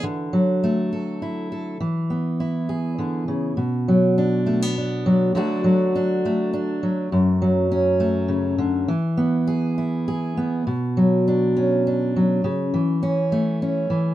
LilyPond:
\new Staff \with { instrumentName = "Steel-string acoustic guitar" } { \time 3/4 \key b \dorian \tempo 4 = 102 << { r4 a8 a'8 e'8 a'8 | r4 e'8 gis'4. | r4 d'8 a16 b16 d'4 | <fis a d' fis'>4 d'8 a8 d'4 |
r4 cis'8 a4. | r4 gis'8 e'8 gis'4 | r4 d'8 cis'8 d'4 | r4 cis'8 a8 cis'4 | } \\ { <d e>8 fis2~ fis8 | e8 b4. d8 cis8 | b,8 fis2 fis8 | d8 fis2 fis8 |
fis,8 fis4. cis8 d8 | e8 b2 b8 | b,8 fis2 fis8 | cis8 e2 e8 | } >> }